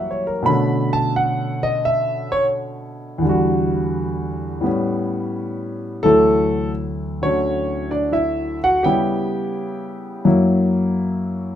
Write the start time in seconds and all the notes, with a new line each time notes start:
Already playing: F#2 E3 G3 A#3 F#4 G4 E5
0.11 C#5
0.27 A#4
0.42 B2 A3 C#4 B5
0.47 D3
0.93 A5
1.16 F#5
1.63 D#5
1.85 E5
2.32 C#5
3.18 E2 D3
3.25 G3 F#4
4.61 A2 G3 B3
4.66 C#4
6.03 D2 E3 F#3 A3 E4 A4
7.22 D3 A3 C#4 F#4 C#5
7.91 D4 D5
8.12 E4 E5
8.64 F#4 F#5
8.83 C#3 G3 B3 E4 G4 G5
10.25 F#2 F#3 A#3 E4